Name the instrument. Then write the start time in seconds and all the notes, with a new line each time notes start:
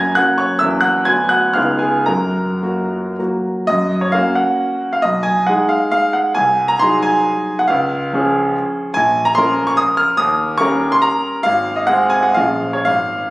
grand piano
Already playing: F#2 F#3 A#3 C#4 F#5 G#5 A#5 F#6 G#6 A#6
0.15 F#3 A#3 C#4 F#5 F#6
0.38 C#5 C#6
0.59 E2 F#3 A#3 C#4 E5 E6
0.81 F#5 F#6
1.05 D2 F#3 B3 D4 G#5 G#6
1.29 F#5 F#6
1.53 C#2 G#3 B3 D#4 F5 F6
1.79 G#4 G#5
2.06 F#2 A#4 A#5
2.63 F#3 A#3 F#4
3.19 F#3 A#3 F#4
3.67 F#2 D#5
4.01 C#5
4.12 A#3 C#4 F#4 F5
4.35 F#5
4.93 F5
5.02 B1 D#5
5.23 G#5
5.47 G#3 D#4 G#4 F#5
5.69 F5
5.91 F5
6.13 F#5
6.35 C2 G#5
6.68 A#5
6.79 F#3 D#4 G#4 C6
7.02 G#5
7.59 F#5
7.68 C#2 F5
8.13 F3 C#4 G#4
8.94 A#1 G#5
9.25 A#5
9.35 F3 C#4 A#4 C6
9.67 C#6
9.77 D#6
9.97 F6
10.17 D#2 D#6
10.58 G3 C#4 A#4 C#6
10.92 C6
11.02 A#5
11.43 G#1 F5
11.76 D#5
11.87 G#3 C4 G#4 F#5
12.10 G#5
12.23 F#5
12.34 A#1 F3 C#4 G#4 F5
12.73 C#5
12.85 G#1 F5